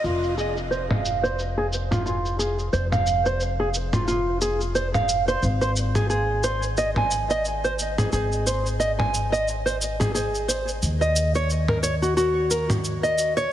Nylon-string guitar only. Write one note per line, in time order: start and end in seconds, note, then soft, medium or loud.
0.04 0.36 F4 medium
0.37 0.56 G#4 medium
0.71 0.82 C5 medium
0.90 1.22 F5 medium
1.23 1.37 C5 medium
1.57 1.66 G#4 medium
1.91 2.04 F4 medium
2.06 2.38 F4 medium
2.39 2.57 G#4 medium
2.73 2.84 C5 medium
2.92 3.24 F5 medium
3.26 3.40 C5 medium
3.60 3.68 G#4 medium
3.93 4.06 F4 medium
4.08 4.40 F4 medium
4.41 4.60 G#4 medium
4.75 4.86 C5 medium
4.94 5.26 F5 medium
5.28 5.42 C5 medium
5.61 5.70 C5 medium
5.95 6.09 G#4 medium
6.10 6.42 G#4 medium
6.44 6.62 C5 medium
6.78 6.89 D#5 medium
6.97 7.29 G#5 medium
7.30 7.44 D#5 medium
7.64 7.73 C5 medium
7.98 8.11 G#4 medium
8.13 8.45 G#4 medium
8.46 8.65 C5 medium
8.80 8.91 D#5 medium
8.99 9.31 G#5 medium
9.32 9.46 D#5 medium
9.66 9.74 C5 medium
10.00 10.13 G#4 medium
10.14 10.47 G#4 medium
10.48 10.67 C5 medium
11.01 11.33 D#5 medium
11.35 11.49 C#5 medium
11.69 11.77 A#4 medium
11.83 11.94 C#5 medium
12.02 12.16 F#4 medium
12.17 12.49 F#4 medium
12.51 12.69 A#4 medium
13.03 13.35 D#5 medium
13.37 13.51 C#5 medium